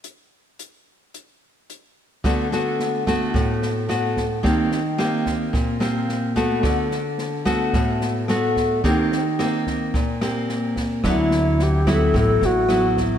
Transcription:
0.04 closed hi-hat
0.59 closed hi-hat
1.14 closed hi-hat
1.70 closed hi-hat
2.24 D3 A3 B3 F#4, kick, cross-stick, snare
2.52 A3 B3 F#4, snare
2.79 snare
3.07 A3 B3 F#4, kick, cross-stick, snare
3.34 A2, kick, snare
3.62 snare
3.89 A3 B3 F#4, cross-stick, snare
4.17 kick, snare
4.43 D#3 A#3 C4 G4, kick, snare
4.71 snare
4.98 A#3 C4 G4, cross-stick, snare
5.26 kick, snare
5.53 A#2, kick, snare
5.80 A#3 C4 G4, cross-stick, snare
6.09 snare
6.36 A3 B3 F#4, kick, snare
6.63 D3, kick, cross-stick, snare
6.91 snare
7.18 snare
7.45 A3 B3 F#4, kick, cross-stick, snare
7.73 A2, kick, snare
8.01 snare
8.28 A3 B3 F#4, cross-stick, snare
8.56 kick, snare
8.84 D#3 A#3 C4 G4, kick, snare
9.12 snare
9.39 A#3 C4 G4, cross-stick, snare
9.67 kick, snare
9.94 A#2, kick, snare
10.21 A#3 C4 G4, cross-stick, snare
10.49 snare
10.76 kick, snare
11.04 D2 D3 F#3 B3 E4, kick, cross-stick, snare
11.31 snare
11.59 G4, snare
11.87 F#3 B3 E4 A4, kick, cross-stick, snare
12.14 A1 A2, kick, snare
12.18 A4
12.41 A1, snare
12.46 F#4
12.69 F#3 B3 E4, cross-stick, snare
12.97 kick, snare

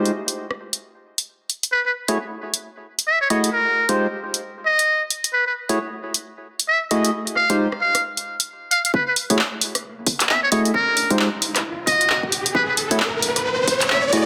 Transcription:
Already playing: G#3 D#4 F4 G4 C5
0.05 closed hi-hat
0.28 closed hi-hat
0.51 cross-stick
0.73 closed hi-hat
1.18 closed hi-hat
1.50 closed hi-hat
1.63 closed hi-hat
1.72 B4
1.85 B4
2.08 A3 E4 F#4 G#4 C#5, closed hi-hat
2.54 closed hi-hat
2.99 closed hi-hat
3.07 E5
3.21 C#5
3.30 A3 E4 F#4 G#4 C#5 D#5, closed hi-hat
3.44 closed hi-hat
3.53 A#4
3.89 G#3 D#4 F4 G4 C5, closed hi-hat
4.34 closed hi-hat
4.66 D#5
4.79 closed hi-hat
5.10 closed hi-hat
5.24 closed hi-hat
5.33 B4
5.47 B4
5.69 A3 E4 F#4 G#4 C#5, closed hi-hat
6.14 closed hi-hat
6.60 closed hi-hat
6.68 E5
6.91 A3 E4 F#4 G#4 D#5, closed hi-hat
7.05 closed hi-hat
7.27 closed hi-hat
7.36 F5, cross-stick
7.50 G#3 D#4 F4 G4 C5, closed hi-hat
7.72 cross-stick
7.81 F5
7.95 cross-stick, closed hi-hat
8.17 closed hi-hat
8.40 closed hi-hat
8.71 F5, closed hi-hat
8.85 F5, closed hi-hat
8.94 B4, kick, riser
9.08 B4
9.16 open hi-hat
9.30 A3 E4 F#4 G#4 C#5, kick, closed hi-hat
9.39 clap
9.61 open hi-hat
9.75 cross-stick, closed hi-hat
10.07 kick, open hi-hat
10.20 clap, closed hi-hat
10.29 E5, clap
10.43 C#5
10.52 A3 E4 F#4 G#4 C#5 D#5, open hi-hat
10.65 closed hi-hat
10.74 A#4, kick
10.97 open hi-hat
11.10 G#3 D#4 F4 G4 C5, kick, closed hi-hat
11.19 clap
11.42 open hi-hat
11.56 cross-stick, clap, closed hi-hat
11.87 D#5, kick, open hi-hat
12.01 closed hi-hat
12.10 clap
12.23 kick
12.32 open hi-hat
12.46 closed hi-hat
12.55 B4, kick
12.69 B4
12.77 open hi-hat
12.91 A3 E4 F#4 G#4 C#5, kick, closed hi-hat
13.00 clap
13.22 open hi-hat
13.36 cross-stick, closed hi-hat
13.68 kick, open hi-hat
13.81 clap, closed hi-hat
13.90 E5, clap
14.13 A3 E4 F#4 G#4 D#5, open hi-hat

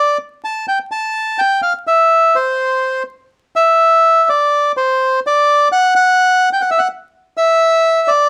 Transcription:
Already playing: D5
0.44 A5
0.68 G5
0.91 A5
1.38 G5
1.62 F5
1.87 E5
2.36 C5
3.56 E5
4.29 D5
4.77 C5
5.27 D5
5.72 F#5
5.96 F#5
6.53 G5
6.61 F#5
6.71 E5
6.79 F#5
7.37 E5
8.08 D5

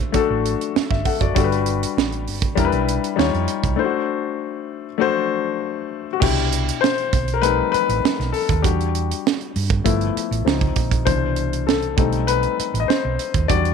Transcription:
Already playing: A3 D4 F#4 C5
0.12 A3 D4 F#4 A4, muted fingered electric bass stroke, kick, closed hi-hat
0.30 A1
0.45 closed hi-hat
0.61 closed hi-hat
0.76 muted fingered electric bass stroke, snare
0.91 G1 E5, kick, snare
1.05 A4 F#5, kick, open hi-hat
1.21 F#1 F#4 D5, kick, closed hi-hat
1.35 G1 G3 D4 F#4 A4, kick, closed hi-hat
1.44 B4
1.52 closed hi-hat
1.66 closed hi-hat
1.83 closed hi-hat
1.97 A1, snare
2.12 closed hi-hat
2.27 G1, open hi-hat
2.42 kick, closed hi-hat
2.55 E1 G3 D4 E4 A#4, kick, closed hi-hat
2.65 B4
2.72 B1, closed hi-hat
2.88 closed hi-hat
3.04 closed hi-hat
3.16 D#2 G3 D#4 F4 C#5, snare
3.34 F2, closed hi-hat
3.48 closed hi-hat
3.63 C2, kick, closed hi-hat
3.76 A3 D4 E4 C5
3.84 F#4
4.98 A3 D4 F#4 C5
6.13 F#4
6.20 C2 B2 D4 E4 G4, kick, crash
6.52 closed hi-hat
6.68 closed hi-hat
6.81 C5, snare
6.98 closed hi-hat
7.13 B1, kick, closed hi-hat
7.28 closed hi-hat
7.34 A#4
7.42 G3 A3 C4 D#4 B4, closed hi-hat
7.72 B4, muted fingered electric bass stroke, closed hi-hat
7.89 A1, closed hi-hat
8.04 muted fingered electric bass stroke, snare
8.20 B1, snare, closed hi-hat
8.33 A4, open hi-hat
8.49 D#2, kick, closed hi-hat
8.62 E2 G3 D4 F#4 G4, kick, closed hi-hat
8.80 closed hi-hat
8.95 closed hi-hat
9.11 closed hi-hat
9.27 snare
9.41 closed hi-hat
9.56 G2, open hi-hat
9.70 kick
9.84 G1 F3 A3 B3 E4, kick, closed hi-hat
10.01 closed hi-hat
10.16 muted fingered electric bass stroke, closed hi-hat
10.31 A1, closed hi-hat
10.45 C#2 F3 C4 D#4, snare
10.61 kick, closed hi-hat
10.76 A#1, kick, closed hi-hat
10.91 kick, closed hi-hat
11.05 C2 B2 E3 D4 C5, kick, closed hi-hat
11.36 closed hi-hat
11.53 closed hi-hat
11.67 A4, snare
11.82 closed hi-hat
11.97 B1 G3 A3 C4 D#4, kick, closed hi-hat
12.12 closed hi-hat
12.27 B4, closed hi-hat
12.43 closed hi-hat
12.59 muted fingered electric bass stroke, closed hi-hat
12.74 A1, closed hi-hat
12.80 D#5
12.88 C5, muted fingered electric bass stroke, snare
13.05 B1
13.19 closed hi-hat
13.34 D#2, kick, closed hi-hat
13.48 E2 G3 D4 F#4 D5, kick, closed hi-hat
13.65 closed hi-hat

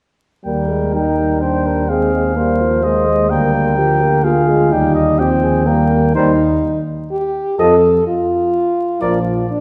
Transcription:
0.45 D#2 G3 A#3 A#4 G5
0.69 G#3
0.94 G3 D#4 G5
1.18 G3
1.41 D4 C5 G5
1.67 A#4
1.89 G#3 C4 G#4 F5
2.14 G#3
2.36 G3 A#3 C5
2.61 F3
2.83 G#3 A#3 D#5
3.07 G#3
3.30 D2 G3 A#3 A#4 G5
3.54 A#4
3.77 F3 G4
4.01 A#3
4.24 A#3 F4 G#4 F5
4.49 G#3
4.72 D#2 G3 D#4 G4 G5
4.95 D#5
5.19 F3 C4 G4 G5
5.43 G#4
5.66 G3 A#3 A#4 G5
6.15 D#2 G3 D#4 A#4 C5
7.11 G4
7.58 F2 F3 A4 D#5
8.07 F4
9.01 A#1 F3 A#4 D5
9.50 D4

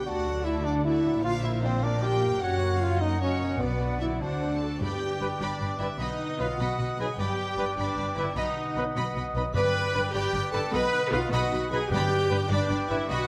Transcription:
Already playing: D3 A3 D4
0.00 D5 F#5
0.05 D2 D3 A3 F#4 D5 A5
0.26 F#3 D4 A4 F#5
0.44 A3 E4 F#4 D5 E5
0.64 F#3 D4 A4 D5 F#5
0.84 A3 E4 F#4 D5 E5
1.04 A#2 F#3 D4 A4 F#5
1.09 A#3
1.14 D4
1.18 D5
1.22 A#1 A#2 F3 D4 F4 C5 D5 F5
1.42 A#3 E4 F4 A#4 E5 F5
1.62 F3 C4 D4 F4 C5 D5
1.81 A#3 D4 F4 A#4 D5 F5
1.85 G5
2.02 F3 D4 F4 G4 D5 G5
2.21 F#2 A#3 F4 A#4 F5
2.28 A#3
2.33 F#4
2.37 F#1 F#4 C#5 F#5
2.42 F#2 C#4 F#4 C#5
2.61 A#3 C#4 A#4 F#5
2.80 C#4 F4 F#4 C#5 F5
2.99 A#3 C#4 D#4 A#4 D#5 F#5
3.20 C#4 F#4 C#5
3.40 B2 A#3 C#4 A#4 F#5
3.46 B3
3.51 F#4
3.55 B3 D5
3.60 B1 B2 B3 F#4 B4 D5
3.80 D4 B4 F#5
4.00 D3 B3 E4 F#4 D5 E5
4.07 C4
4.11 F#4
4.16 D4 D5
4.20 D2 D3 D4 F#4 C5 D5 F#5 A5
4.42 C4 D4 A4 C5
4.59 D4 F#4 A4 C5 D5 A5
4.80 G1 G2 G4 B4 D5 G5 B5
4.90 B3
5.10 D5
5.20 G1 G2 G3 D4 B4 D5 B5
5.29 G5
5.39 G1 G2 D4 D5 B5 D6
5.49 B4
5.59 G1 G2 G4 D5 B5
5.69 B3
5.78 G1 G2 D3 G3 D4 E4 B4 D5 E5 B5
5.88 B3
5.97 B1 B2 D#4 D#5 F#5 B5
6.09 B3
6.19 F#4
6.28 B4
6.38 B1 B2 F#3 D#4 F4 F#4 B4 D#5 F5 B5
6.48 F#5
6.58 B1 B2 F#4 D#5 F#5 B5
6.69 B4
6.78 B1 B2 F#4 D#5 B5
6.88 B3
6.98 B1 B2 F#3 D#4 G#4 B4 D#5 G#5 B5
7.08 B3
7.17 G1 G2 G4 B4 D5 G5 B5
7.28 B3
7.38 G4
7.47 B4
7.57 G1 G2 G3 D4 G4 B4 D5 B5
7.67 G5
7.76 G1 G2 D4 D5 B5
7.86 B4
7.96 G1 G2 G4 D5 B5
8.06 B3
8.15 G1 G2 D3 G3 D4 E4 B4 D5 E5 B5
8.25 B3
8.35 B1 B2 D#4 D#5 F#5 B5
8.45 B3
8.55 F#4
8.65 B4
8.74 B1 B2 F#3 D#4 F#4 B4 D#5 B5
8.85 F#5
8.94 B1 B2 D#5 B5
9.05 B4
9.14 B1 B2 F#4 D#5 B5
9.24 B3
9.33 B1 B2 F#3 D#4 B4 D#5 B5
9.44 B3
9.53 G1 G2 B4 D5 G5 B5
9.63 B3
9.92 G1 G2 G3 D4 G4 B4 D5 B5
10.03 G5
10.13 G1 G2 G4 B4 D5 G5 B5
10.22 B4
10.33 G1 G2 G4 D5 B5
10.43 B3
10.52 G1 G2 D3 G3 D4 A4 B4 D5 A5 B5
10.63 B3
10.71 B1 B2 B4 D#5 F#5 B5
10.82 B3
10.92 D#4
11.11 B1 B2 F#3 D#4 F4 B4 D#5 F5 B5
11.21 D#5
11.31 B1 B2 F#4 B4 D#5 F#5 B5
11.40 B4
11.51 B1 B2 D#4 D#5 B5
11.60 B3
11.70 B1 B2 F#3 D#4 G#4 B4 D#5 G#5 B5
11.80 B3
11.90 G1 G2 G4 B4 D5 G5 B5
12.00 B3
12.10 D4
12.29 G1 G2 G3 D4 B4 D5 B5
12.40 D5
12.49 G1 G2 D4 B4 D5 G5 B5
12.60 B4
12.69 G1 G2 D4 D5 B5
12.79 B3
12.88 G1 G2 D3 G3 D4 E4 B4 D5 E5 B5
12.99 B3
13.09 B1 B2 F#4 B4 D#5 F#5 B5
13.20 B3

